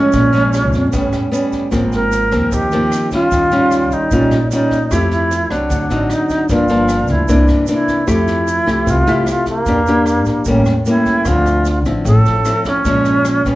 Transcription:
Already playing: A2 F3 G#3 C#4
0.12 A#1 A#2, kick, snare, shaker
0.33 F3 G#3 C#4, snare, shaker
0.53 cross-stick, snare, shaker
0.73 F2, kick, snare, shaker
0.92 A1 A2 G3 B3 C#4, kick, snare, shaker
1.13 E2, cross-stick, snare, shaker
1.31 G3 B3 C#4, snare, shaker
1.52 kick, snare, shaker
1.71 G#1 G#2 F3 A#3 C4, kick, cross-stick, snare, shaker
1.92 A#4, snare, shaker
2.12 snare, shaker
2.31 D#2 F3 A#3 C4, kick, cross-stick, snare, shaker
2.52 D#2 D#3 G4, kick, snare, shaker
2.71 D#2 F3 A#3 C4, snare, shaker
2.92 cross-stick, snare, shaker
3.11 G3 C#4 F4, kick, snare, shaker
3.31 D#2 D#3, kick, snare, shaker
3.51 G3 C#4 F4, snare, shaker
3.71 cross-stick, snare, shaker
3.91 A#1 D#4, kick, snare, shaker
4.11 A#1 A#2 G3 C#4 F4, kick, snare, shaker
4.31 A#1, cross-stick, snare, shaker
4.51 G3 C#4 D#4 F4, snare, shaker
4.71 kick, snare, shaker
4.91 F2 F3 A3 E4 G4, kick, cross-stick, snare, shaker
5.11 E4, snare, shaker
5.31 snare, shaker
5.50 C2 F#3 C4 D4, kick, cross-stick, snare, shaker
5.70 D2 D3, kick, snare, shaker
5.90 A1 F#3 C4 D#4, snare, shaker
6.10 D#4, cross-stick, snare, shaker
6.29 kick, snare, shaker
6.49 G1 G2 F3 A#3 D4 F4, kick, snare, shaker
6.68 F3 A#3 D4, snare, shaker
6.89 cross-stick, snare, shaker
7.07 D2 E4, kick, snare, shaker
7.28 C2 C3 E3 A#3 D4, kick, snare, shaker
7.48 G2, cross-stick, snare, shaker
7.67 E3 A#3 D4, snare, shaker
7.73 E4
7.88 kick, snare, shaker
8.07 F2 F3 A3 E4 G4, kick, cross-stick, snare, shaker
8.12 E4
8.28 snare, shaker
8.47 snare, shaker
8.66 C2 A3 E4 G4, kick, cross-stick, snare, shaker
8.86 C2 C3, kick, snare, shaker
8.90 F4
9.07 C2 A3 E4 G4, snare, shaker
9.26 cross-stick, snare, shaker
9.31 F4
9.46 A#3, kick, snare, shaker
9.66 E2 E3 A#3 D4 G4, kick, snare, shaker
9.87 A#3 D4 G4, snare, shaker
10.06 cross-stick, snare, shaker
10.25 A#2, kick, snare, shaker
10.45 A1 A2 G3 A#3 C#4, kick, snare, shaker
10.66 E2, cross-stick, snare, shaker
10.86 G3 A#3 C#4 E4, snare, shaker
11.06 kick, snare, shaker
11.25 D2 D3 F3 C4 F4, kick, cross-stick, snare, shaker
11.46 snare, shaker
11.65 snare, shaker
11.85 A1 F3 C4 E4, kick, cross-stick, snare, shaker
12.04 A1 A2 A4, kick, snare, shaker
12.25 A1, snare, shaker
12.45 F3 C4 E4, cross-stick, snare, shaker
12.65 C#4, kick, snare, shaker
12.85 A#1 A#2 F3 G#3 C#4, kick, snare, shaker
13.05 snare, shaker
13.25 cross-stick, snare, shaker
13.45 A#1 G3 B3 C#4, kick, snare, shaker

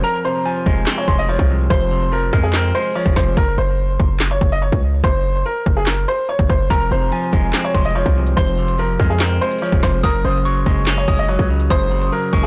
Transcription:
0.03 F2 A#4 A#5
0.24 C3 C5
0.45 F3 G#5
0.66 F1 G#3, kick
0.87 C4, snare, clap
0.98 C#5
1.08 F1 G#3 C6, kick
1.19 D#5
1.29 F3 C#5
1.39 C2, kick
1.50 C3
1.70 F1 F2 C5 C6, kick
1.91 C3
2.12 F3 A#4
2.33 F2 G#3 F6, kick
2.43 G#4
2.53 C4 A#4, snare, clap
2.75 G#3 C5
2.95 F3 C#5
3.06 F1, kick
3.16 F1 C3 C5, kick, snare
3.37 F#1 A#4, kick
3.58 F#1 C5
4.00 F#1, kick
4.20 snare, clap
4.31 C#5
4.41 F#1, kick
4.52 D#5
4.62 C#5
4.72 C#2, kick
5.04 F#1 C5, kick
5.46 A#4
5.66 F#1, kick
5.77 G#4
5.87 A#4, snare, clap
6.08 C5
6.29 C#5
6.39 F#1, kick
6.50 F#1 C5, kick
6.70 F1 F2 A#4 A#5, kick, closed hi-hat
6.91 F1 C3 C5
7.12 F3 G#5, closed hi-hat
7.33 F1 G#3, kick, closed hi-hat
7.53 C4, snare, clap, closed hi-hat
7.64 C#5
7.74 F1 G#3 C6, kick, closed hi-hat
7.85 D#5, closed hi-hat
7.95 F3 C#5
8.06 C2, kick
8.16 C3
8.27 closed hi-hat
8.37 F1 F2 C5 C6, kick, closed hi-hat
8.58 C3
8.68 closed hi-hat
8.78 F3 A#4
9.00 F2 G#3 F6, kick, closed hi-hat
9.10 G#4
9.20 C4 A#4, snare, clap, closed hi-hat
9.41 G#3 C5
9.52 closed hi-hat
9.59 F3 C#5, closed hi-hat
9.66 closed hi-hat
9.72 F1, kick
9.83 F1 C3 C5, kick, snare, open hi-hat
10.03 F#1 F#2 A#4 D#6, kick, closed hi-hat
10.25 F#1 C#3 C5
10.45 F#3 C#6, closed hi-hat
10.66 F#1 G#3, kick, closed hi-hat
10.87 C#4, snare, clap, closed hi-hat
10.98 C#5
11.08 F#1 G#3 D#6, kick, closed hi-hat
11.18 D#5, closed hi-hat
11.29 F#3 C#5
11.39 C#2, kick
11.50 C#3
11.60 closed hi-hat
11.70 F#1 F#2 C5 D#6, kick, closed hi-hat
11.91 C#3
12.02 closed hi-hat
12.12 F#3 A#4
12.33 F#1 G#3 C#6, kick, closed hi-hat
12.43 G#4

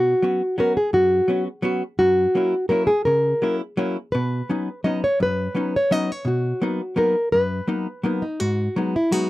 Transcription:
Already playing: B2 F#4
0.22 F#3 B3 C#4 F#4
0.58 F#3 B3 C#4 F#4 A#4
0.77 G#4
0.93 F#2 F#4
1.28 F#3 B3 C#4 F#4
1.62 F#3 B3 C#4 F#4
1.99 F#2 F#4
2.35 F#3 A#3 C#4 E4
2.69 F#3 A#3 C#4 E4 A#4
2.87 G#4
3.05 C#3 A#4
3.42 F#3 A#3 C#4 E4
3.77 F#3 A#3 C#4 E4
4.12 B2 B4
4.49 F#3 B3 C#4 D#4
4.84 F#3 B3 C#4 D#4 D#5
5.04 C#5
5.20 F#2 B4
5.55 F#3 B3 C#4 D#4
5.76 C#5
5.91 F#3 B3 C#4 D#4 D#5
6.12 C#5
6.25 B2 F#4
6.62 F#3 A#3 B3 D#4
6.96 F#3 A#3 B3 D#4 A#4
7.32 F#2 B4
7.68 F#3 A#3 B3 D#4
8.03 F#3 A#3 B3 D#4
8.22 D#4
8.40 G#2 F#4
8.76 F#3 G#3 B3 D#4
8.96 E4
9.12 F#3 G#3 B3 D#4 F#4

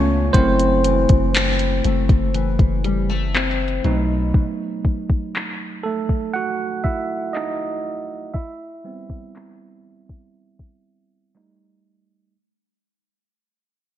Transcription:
Already playing: C#2 C#3 A3 B3 C#4 F4 C#5
0.33 F#1 F#2 A3 C4 E4 C5, kick, closed hi-hat
0.59 closed hi-hat
0.84 E3, closed hi-hat
1.09 F#1, kick, closed hi-hat
1.34 C4, clap, closed hi-hat
1.59 closed hi-hat
1.84 F#1 A3, closed hi-hat
2.09 F#1, kick, closed hi-hat
2.34 E3, closed hi-hat
2.59 F#1, kick, closed hi-hat
2.84 G3, closed hi-hat
3.09 A3
3.34 C4, clap, closed hi-hat
3.51 closed hi-hat
3.68 closed hi-hat
3.84 B1 B2 F#3 A3 D#4, closed hi-hat
4.34 kick
4.85 kick
5.10 kick
5.36 clap
5.83 A3 A4
6.09 kick
6.34 F#4 F#5
6.84 E4 E5, kick
7.33 D#4 D#5, clap
8.34 E4 E5, kick
8.84 G3 B3 C4
9.10 kick
9.36 clap
10.09 kick
10.59 kick
11.35 G3 A3 D#4, clap

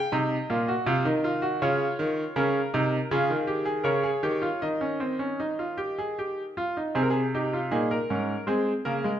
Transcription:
Already playing: G5
0.12 C3 D#4 D#5
0.50 A#2 F4
0.68 F#4
0.86 C3 F4
1.05 D#3 D#4
1.24 F4
1.42 F#4
1.62 C#3 F4 C#5
1.99 D#3
2.36 C#3 C#4 A#4
2.74 C3 D#4
3.11 C#3 F4 G#4
3.30 D#3
3.47 G4
3.65 G#4
3.84 C#3 A#4 C#5
4.03 G#4
4.23 D#3 G4
4.42 F4
4.62 D#3 D#4 D#5
4.81 C#4
5.00 C4
5.19 C#4
5.40 D#4
5.59 F4
5.78 G4
5.99 G#4
6.19 G4
6.57 F4
6.77 D#4
6.95 C3 C4 G#4
7.03 A#4
7.10 G#4
7.35 D#4 G4
7.53 F4
7.71 A#2 D#4 G#4
7.91 A#4
8.10 G#2 C#4
8.47 G#3 C4 G#4
8.85 C#3 A#3 A#4
9.04 G#3

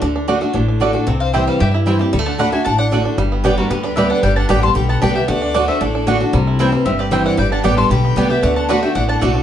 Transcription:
Already playing: A3
0.02 D2 D3 D4
0.16 D4
0.28 D3 A3 D4 F#4 D5 F#5
0.41 A3 D4 F#4
0.53 A1 A2 D4
0.68 D4
0.80 D3 A3 D4 F#4 A4 D5 F#5
0.93 D4 F#4
1.07 C2 C3 C4
1.20 C5 F5
1.33 E3 G3 C4 E4 G4 C5 E5 G5
1.47 G3 C5 F5
1.60 G2 G4 E5 G5
1.74 E4
1.86 E3 G3 C4 E4 C5 G5
1.99 C4 E4 G4
2.13 D2 D3 G3
2.19 A3
2.26 D4 F#5 A5
2.39 D3 A3 D4 F#4 D5 F#5 B5
2.52 D4 F#4 E5 G#5
2.65 A1 A2 D4 F#5 A5
2.78 D4 D5 F#5
2.91 D3 A3 D4 F#4 D5 F#5
3.05 D4
3.17 G1 G2 G3
3.32 B3
3.44 D3 G3 B3 D4 G4 D5 G5
3.57 G3 B3 F#4 G4 A#4
3.70 D2 D3 B3 G4 B4
3.83 D4 B4 D5
3.96 D3 G3 B3 G4 B4 D5 E5 G5
4.10 D4 D5 F#5
4.23 G1 G2 G3 D5 G5
4.36 D4 F#5 A5
4.49 A1 D3 G3 B3 G4 D5 G5 B5
4.62 G3 B3 G4 A5 C6
4.75 B1 D3 G4 G5 B5
4.89 B3 F#5 A5
5.02 C2 D3 G3 B3 D4 G4 D5 G5 B5
5.15 B3 G4 E5 G5
5.28 D2 D3 A3 D5 F#5
5.42 D4
5.54 D3 A3 D4 F#4 D5 F#5
5.68 A3 C5 E5
5.80 A1 A2 D4 A4 D5
5.95 D4
6.07 D3 A3 D4 F#4 D5 F#5
6.20 D4 F#4
6.33 C2 C3 G3
6.47 E4
6.59 E3 G3 C4 E4 C5 G5
6.72 G3 C4 E4
6.85 G1 G2 C4 C5 E5
6.99 G4 B4 D5
7.11 E3 G3 C4 E4 C5 E5 G5
7.26 E4 D5 F#5
7.37 G1 G2 G3 D5 G5
7.52 D4 F#5 A5
7.63 A1 D3 G3 B3 G4 D5 G5 B5
7.77 G3 A5 C6
7.90 B1 D3 G4 G5 B5
8.05 B3
8.16 C2 D3 G3 B3 D4 G4 D5 G5
8.30 B3 G4 E5 G5
8.43 D2 D3 A3 D5 F#5
8.56 D4 F#5 A5
8.69 D3 A3 D4 F#4 D5 F#5 B5
8.83 A3 D4 F#4 E5 G5
8.95 A1 A2 D4 D5 F#5
9.09 D4 F#5 A5
9.21 B1 D3 A3 D4 F#4 D5 F#5
9.35 D4

